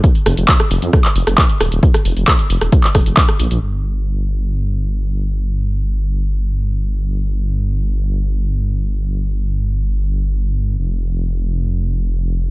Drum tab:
HH |xxoxxxoxxxoxxxox|xxoxxxoxxxoxxxox|----------------|----------------|
CP |----x----x--x---|----x----x--x---|----------------|----------------|
SD |--r--r--r--r--r-|-r--r--r--r--r--|----------------|----------------|
BD |o---o---o---o---|o---o---o-o-o---|----------------|----------------|

HH |----------------|----------------|----------------|
CP |----------------|----------------|----------------|
SD |----------------|----------------|----------------|
BD |----------------|----------------|----------------|